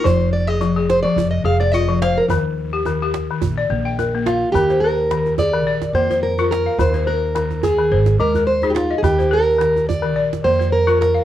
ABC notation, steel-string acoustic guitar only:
X:1
M:4/4
L:1/16
Q:"Swing 16ths" 1/4=107
K:Eb
V:1 name="Steel-string acoustic guitar"
c2 d e3 c d2 e f d e2 f B- | B z12 z F2 | G2 B4 d4 c2 B2 B2 | c2 B4 A4 B2 c3/2 G/2 F3/2 A/2 |
G2 B4 d4 c2 B2 B2 |]